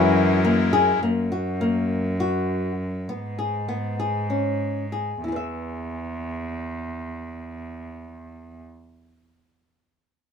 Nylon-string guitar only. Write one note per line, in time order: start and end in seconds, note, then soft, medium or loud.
0.00 0.35 F#4 medium
0.45 0.69 A#3 medium
0.73 0.98 G#4 medium
1.03 1.27 A#3 medium
1.32 1.57 F#4 medium
1.61 2.11 A#3 medium
2.20 2.71 F#4 medium
3.09 3.35 B3 medium
3.39 3.65 G#4 medium
3.69 3.95 B3 medium
4.00 4.26 G#4 medium
4.30 4.84 C#4 medium
4.92 5.20 G#4 soft
5.24 5.36 E4 soft
5.28 8.62 G#4 soft
5.28 8.66 B4 soft
5.36 8.70 E5 soft